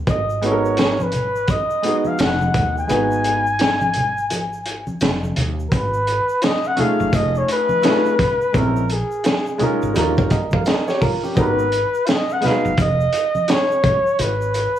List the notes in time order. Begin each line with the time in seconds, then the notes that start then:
0.07 G#1 D#5, kick, closed hi-hat, shaker
0.30 shaker
0.42 G#3 B3 D#4 F#4 A4, closed hi-hat, shaker
0.46 C#5
0.52 A#4
0.65 shaker
0.77 snare, closed hi-hat, shaker
1.00 B4, high conga, shaker
1.12 closed hi-hat, low conga, shaker
1.36 shaker
1.48 D#5, kick, closed hi-hat, high conga, shaker
1.70 shaker
1.82 G#3 B3 D#4 F#4, closed hi-hat, shaker
1.86 G#4
2.05 F5, high conga, shaker
2.19 F1 F#5, snare, closed hi-hat, shaker
2.41 high conga, shaker
2.54 D#2, kick, closed hi-hat, high conga, low conga, shaker
2.77 G#5, shaker
2.88 G#1 G#3 B3 D#4 F#4, closed hi-hat, shaker
2.92 B4
3.12 shaker
3.24 closed hi-hat, shaker
3.47 shaker
3.59 snare, closed hi-hat, shaker
3.81 high conga, shaker
3.94 closed hi-hat, low conga, shaker
4.18 shaker
4.30 closed hi-hat, high conga, shaker
4.53 shaker
4.66 closed hi-hat, shaker
4.87 high conga, shaker
5.01 F1, snare, closed hi-hat, shaker
5.24 high conga, shaker
5.36 D#2, closed hi-hat, high conga, low conga, shaker
5.60 shaker
5.69 G#1 A#4, kick, closed hi-hat, shaker
5.74 B4
5.94 shaker
6.07 closed hi-hat, shaker
6.29 shaker
6.42 D#5, snare, closed hi-hat, shaker
6.64 F#5, shaker
6.76 A3 C#4 D#4 F4, closed hi-hat, low conga, shaker
6.80 G#4 F5
7.00 F#1, shaker
7.13 F1 D#5, kick, closed hi-hat, high conga, shaker
7.35 C#5, shaker
7.48 B4, closed hi-hat, shaker
7.69 high conga, shaker
7.82 A3 C#4 D#4 F4, snare, closed hi-hat, shaker
7.86 G#4
8.06 shaker
8.19 kick, closed hi-hat, high conga, low conga, shaker
8.41 shaker
8.52 A#1 G#3 C4 C#4 E4, kick, closed hi-hat, shaker
8.57 A#4
8.76 shaker
8.89 G#4, closed hi-hat, shaker
9.11 shaker
9.24 snare, closed hi-hat, shaker
9.46 shaker
9.58 G#3 C#4 D#4 F4 A#4, closed hi-hat, low conga, shaker
9.82 G#1, shaker
9.94 D#2 G3 C#4 D#4 F4 A#4, closed hi-hat, high conga, shaker
10.17 kick, shaker
10.30 A#4 D#5, kick, closed hi-hat, shaker
10.51 A#4 F5, kick, high conga, shaker
10.65 A#4 D#5, snare, closed hi-hat, shaker
10.88 G4 C#5, snare, shaker
11.01 F4 A#4, kick, open hi-hat, high conga, low conga, shaker
11.23 C#4 G4, shaker
11.35 G#1 G#3 B3 D#4 F#4 A#4, kick, closed hi-hat, shaker
11.40 B4
11.59 shaker
11.72 closed hi-hat, shaker
11.94 shaker
12.06 F5, snare, closed hi-hat, shaker
12.11 D#5
12.29 F#5, shaker
12.41 G#3 B3 D#4 F#4, closed hi-hat, low conga, shaker
12.45 B4 F5, snare
12.65 F#1, shaker
12.77 F1 D#5, kick, closed hi-hat, high conga, shaker
13.01 shaker
13.13 closed hi-hat, shaker
13.35 high conga, shaker
13.48 C#5, snare, closed hi-hat, shaker
13.72 shaker
13.84 kick, closed hi-hat, high conga, low conga, shaker
14.07 shaker
14.19 G#1 B4, closed hi-hat, shaker
14.42 shaker
14.54 closed hi-hat, shaker
14.76 shaker